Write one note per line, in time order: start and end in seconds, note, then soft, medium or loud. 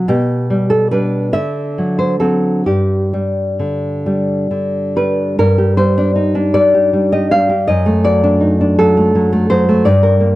0.08 1.30 B2 medium
0.08 0.68 G4 medium
0.50 0.91 G3 soft
0.70 0.91 A4 medium
0.91 1.30 G3 soft
0.91 1.31 D4 soft
0.91 1.32 B4 medium
1.33 2.63 D3 soft
1.33 1.97 E5 medium
1.78 2.19 F#3 soft
1.99 2.19 C5 medium
2.20 2.63 F#3 soft
2.20 2.63 C4 soft
2.20 2.65 A4 medium
2.66 5.35 G2 soft
2.66 4.02 G4 medium
3.13 4.05 G3 soft
3.59 4.50 D3 soft
4.06 4.95 G3 soft
4.51 5.39 D3 soft
4.96 5.39 G3 soft
4.96 5.38 B4 medium
5.39 7.64 G2 medium
5.39 5.76 A#4 medium
5.58 6.73 G4 soft
5.77 6.53 G3 soft
5.77 6.51 C5 medium
5.98 6.15 D4 soft
6.16 7.31 D#4 soft
6.35 7.50 D4 soft
6.54 6.92 G3 soft
6.54 7.10 D5 medium
6.74 7.11 G4 soft
6.93 7.31 G3 soft
7.12 7.48 G4 soft
7.12 7.31 D#5 medium
7.31 7.68 G3 soft
7.31 7.67 F5 medium
7.49 7.68 G4 soft
7.67 9.84 F#2 medium
7.67 8.03 D#5 medium
7.86 8.96 A3 soft
8.04 8.78 F#3 soft
8.04 8.76 D5 medium
8.23 8.59 D4 soft
8.40 9.51 D#4 soft
8.61 9.70 D4 soft
8.79 9.14 F#3 soft
8.79 9.49 A4 medium
8.97 9.31 A3 soft
9.15 9.49 F#3 soft
9.33 9.68 A3 medium
9.50 9.87 F#3 soft
9.50 9.85 C5 medium
9.69 9.87 A3 soft
9.85 10.36 G2 medium
9.85 10.36 D5 medium
10.03 10.36 A#4 medium
10.20 10.36 A#3 soft